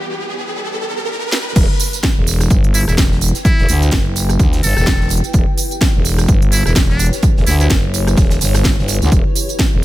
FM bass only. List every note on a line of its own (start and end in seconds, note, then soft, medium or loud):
1.56 1.67 E1 loud
2.17 2.49 E1 loud
2.50 2.86 G1 medium
2.88 3.33 E1 loud
3.59 3.67 E1 loud
3.69 3.91 D2 loud
3.92 4.38 F#1 loud
4.39 4.61 D2 loud
4.63 4.74 G1 loud
4.77 5.22 E1 loud
5.34 5.45 E1 medium
5.95 6.27 E1 medium
6.28 6.63 G1 loud
6.66 7.11 E1 loud
7.37 7.45 E1 loud
7.47 7.69 D2 loud
7.70 8.16 F#1 loud
8.17 8.39 E1 medium
8.41 8.76 G1 loud
8.78 9.00 G1 loud
9.02 9.10 D2 loud
9.12 9.23 E1 loud
9.73 9.85 E1 loud